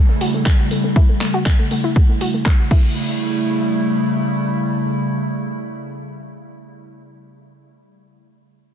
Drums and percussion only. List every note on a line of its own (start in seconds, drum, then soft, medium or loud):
0.21 open hi-hat loud
0.46 kick loud
0.46 clap loud
0.71 open hi-hat medium
0.96 kick loud
1.21 clap medium
1.21 open hi-hat loud
1.46 kick loud
1.46 clap loud
1.71 open hi-hat medium
1.96 kick loud
2.21 open hi-hat loud
2.46 kick loud
2.46 clap loud
2.71 kick loud
2.71 crash medium